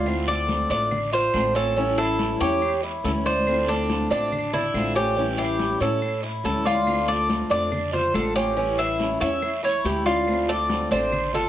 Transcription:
Already playing: D2 F4
0.05 D3 A3 C4 F4, high conga, long guiro, claves
0.27 A4 D5, high conga
0.48 D3 A3 C4 F4, high conga, short guiro
0.69 A1 A3 C4 D4 F4 D5, high conga, short guiro
0.91 muted steel-string acoustic guitar stroke, high conga, low conga, long guiro, claves
1.12 F4 C5, high conga
1.34 A1 D3 A3 C4 F4, high conga, short guiro, claves
1.55 A3 C4 C#4 F4 A4, short guiro
1.76 E3 G3 C#4 E4, high conga, long guiro
1.98 E4 A4, high conga, claves
2.18 E3 G3 C#4 E4, high conga, short guiro
2.39 E2 G3 C#4 E4 G4 C#5, high conga, short guiro
2.61 muted steel-string acoustic guitar stroke, high conga, long guiro, claves
2.83 E4, high conga
3.04 D2 E3 G3 C#4 E4 A4, high conga, short guiro
3.25 G3 C#4 E4 C5 D5, high conga, short guiro
3.46 D3 A3 C4 F4, long guiro, claves
3.68 D4 A4, high conga
3.89 D3 A3 C4 F4, high conga, short guiro
4.10 A1 A3 C4 D4 F4, high conga, short guiro
4.32 muted steel-string acoustic guitar stroke, high conga, low conga, long guiro, claves
4.53 D4 E4, high conga, low conga
4.74 A1 D3 A3 C4 F4, high conga, short guiro, claves
4.95 A3 C4 C#4 F4 G4, short guiro
5.17 E3 G3 C#4 E4, high conga, long guiro
5.38 E4 G4, high conga, claves
5.59 E3 G3 C#4 E4, high conga, short guiro
5.80 A2 G3 C#4 E4 A4 C#5, high conga, short guiro
6.01 muted steel-string acoustic guitar stroke, high conga, long guiro, claves
6.23 E4, high conga
6.43 D2 E3 G3 C#4 E4 A4, high conga, short guiro
6.65 G3 E4 F4 D5, high conga, short guiro
6.86 D3 A3 C4 F4, high conga, long guiro, claves
7.08 A4 D5, high conga
7.29 D3 A3 C4 F4, high conga, short guiro
7.50 F2 A3 C4 D4 F4 D5, high conga, short guiro
7.71 muted steel-string acoustic guitar stroke, high conga, low conga, long guiro, claves
7.93 F4 C5, high conga, low conga
8.14 A1 D3 A3 C4 F4 A4, high conga, short guiro, claves
8.35 A3 C4 C#4 F4 G4, high conga, short guiro
8.56 E3 G3 C#4 E4, high conga, long guiro
8.78 E4 E5, high conga, claves
8.99 E3 G3 C#4 E4, high conga, short guiro
9.20 E2 G3 C#4 E4 C#5 E5, high conga, short guiro
9.42 muted steel-string acoustic guitar stroke, high conga, long guiro, claves
9.63 E4 C#5, high conga
9.84 D2 E3 G3 C#4 E4 G4, high conga, short guiro
10.06 G3 C#4 E4 F4 D5, high conga, short guiro
10.27 D3 A3 C4 F4, high conga, long guiro, claves
10.48 A4 D5, high conga
10.69 D3 A3 C4 F4, high conga, short guiro
10.91 A1 A3 C4 D4 F4 C5, high conga, short guiro
11.12 muted steel-string acoustic guitar stroke, high conga, low conga, long guiro, claves
11.33 F4 A4, high conga, low conga

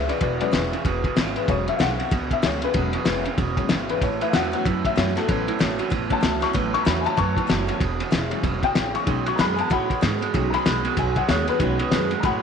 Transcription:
Already playing: B2
0.08 E2 C#3 C#4 E4 B4 D5, ride
0.21 E1 E2 B2 B4 D5, kick, ride
0.40 E2 B2 F#3 G#3 C#4 B4 D5, ride
0.51 E1 E2 C#3 E3 G#3 C#4 E4 B4, snare, ride
0.72 E2 C#3 C#4 E4, ride
0.85 E1 E2 B2, kick, ride
1.04 E2 B2, kick, ride
1.16 G#1 E2 C#3 E3 G#3 C#4 E4, snare, ride
1.36 E2 C#3 B4, ride
1.48 E1 E2 B2 F#3 G#3 C#4 C#5, kick, ride
1.68 E2 B2 E5, ride
1.77 B1 E2 E3 G#3 C#4 E4 F5, snare, ride
1.81 C#3 F#5
1.99 E2 C#3 C#4 E4, ride
2.11 C#2 E2 B2, kick, ride
2.31 E2 B2 E5, kick, ride
2.42 C#2 E2 C#3 E3 G#3 C#4 E4 C#5, snare, ride
2.62 E2 C#3 C#4 E4 B4, ride
2.74 E1 E2 B2 F#3 G#3 C#4, kick, ride
2.93 E2 B2, ride
3.05 E1 E2 C#3 E3 G#3 C#4 E4, snare, ride
3.24 E2 C#3 C#4 E4, ride
3.38 E1 E2 B2, kick, ride
3.57 E2 B2 F#3 G#3 C#4, kick, ride
3.69 G#1 E2 C#3 E3 G#3 C#4 E4, snare, ride
3.89 E2 C#3 B4, ride
4.01 A1 A2 E3 C#5, kick, ride
4.21 A2 E3 E5, ride
4.30 E2 E3 F5, snare, ride
4.34 A2 F#3 A3 C#4 F#4 F#5
4.52 A2 F#3 B3 C#4 F#4, ride
4.65 E2 F#2 A2 E3, kick, ride
4.85 A2 E3 E5, kick, ride
4.96 F#2 A2 E3 F#3 A3 C#4 F#4 C#5, snare, ride
5.15 A2 F#3 C#4 F#4 A4, snare, ride
5.27 A1 A2 E3 F#3 B3 C#4, kick, ride
5.48 A2 E3, ride
5.59 A1 A2 E3 F#3 A3 C#4 F#4, snare, ride
5.78 A2 F#3 C#4 F#4, ride
5.90 A1 E2 A2 E3, kick, ride
6.10 A2 E3 F#3 B3 C#4 A5, kick, ride
6.21 C#2 A2 E3 F#3 A3 C#4 F#4, snare, ride
6.40 A2 F#3 C#4 F#4 C#6, snare, ride
6.53 A1 A2 E3 F#3 B3 C#4, kick, ride
6.74 A2 E3 C#6, ride
6.83 E2 A2 E3 F#3 A3 C#4 F#4 A#5, snare, ride
6.87 B5
7.01 F#4 G#5
7.06 A2 F#3 C#4 A5, ride
7.17 E2 F#2 A2 E3 A5 C#6, kick, ride
7.37 A2 E3, kick, ride
7.47 F#1 A2 E3 F#3 A3 C#4 F#4, snare, ride
7.67 A2 F#3 C#4 F#4, ride
7.80 E1 E2 B2, kick, ride
8.00 E2 B2, ride
8.11 E1 E2 C#3 E3 G#3 C#4 E4, snare, ride
8.29 E2 C#3 F#3 G#3 C#4 E4, ride
8.43 E1 E2 G#2 B2, kick, ride
8.63 E2 B2 G5, kick, ride
8.75 A1 E2 A2 C#3, snare, ride
8.94 E2 C#3 C#6, ride
9.06 B1 B2 D#3 F#3 G#3 C#4, kick, ride
9.26 B2 F#3 C#6, ride
9.36 F#2 B2 D#3 G#3 B3 A#5, snare, ride
9.40 F#4 B5
9.56 B2 G#3 B3 F#4 G#5, ride
9.60 A5
9.70 F#2 A2 B2 F#3 F#5 B5, kick, ride
9.89 B2 F#3, kick, ride
10.01 G#2 B2 D#3 G#3 B3 F#4, snare, ride
10.21 B2 G#3 B3 F#4, ride
10.34 B1 B2 D#3 F#3 G#3 C#4, kick, ride
10.50 B2 F#3 A#5, ride
10.54 B5
10.65 B1 B2 D#3 G#3 B3 F#4, snare, ride
10.85 B2 G#3 B3 F#4, ride
10.97 B1 F#2 B2 F#3 G#5, kick, ride
11.16 B2 F#3 F#5, kick, ride
11.29 D#2 B2 D#3 G#3 B3 F#4 C#5, snare, ride
11.48 B2 G#3 F#4 B4, ride
11.52 B3
11.60 B1 B2 D#3 F#3 G#3 C#4, kick, ride
11.79 B2 F#3, ride
11.91 F#2 B2 D#3 G#3 B3 F#4, snare, ride
12.11 B2 G#3 B3 F#4, ride
12.20 A2 B2 A#5, kick, ride
12.25 F#2 F#3 F#5 B5

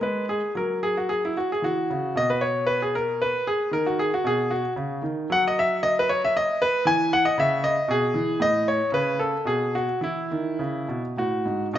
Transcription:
0.01 G#3 B4
0.29 G#4
0.55 F#3 A#4
0.83 G#4
0.97 F#4
1.09 G#4
1.25 E4
1.37 F#4
1.52 G#4
1.62 E3 F#4
1.90 C#3
2.15 B2 D#5
2.30 B4
2.41 C#5
2.67 B4
2.82 G#4
2.95 A#4
3.22 B4
3.47 G#4
3.71 D#3 A#4
3.86 F#4
3.99 G#4
4.14 F#4
4.24 B2 G#4
4.51 F#4
4.76 C#3
5.02 D#3
5.30 F#3 F#5
5.48 D#5
5.59 E5
5.83 D#5
5.99 B4
6.09 C#5
6.25 E5
6.37 D#5
6.62 B4
6.85 E3 G#5
7.13 F#5
7.25 D#5
7.38 C#3 E5
7.64 D#5
7.88 B2 G#4
8.14 E3
8.40 A2 D#5
8.68 C#5
8.92 C#3 B4
9.19 A4
9.45 B2 G#4
9.75 F#4
10.01 E3 E4
10.31 D#3
10.59 C#3
10.88 B2
11.17 A2 F#4
11.45 G#2
11.73 B2 D#4

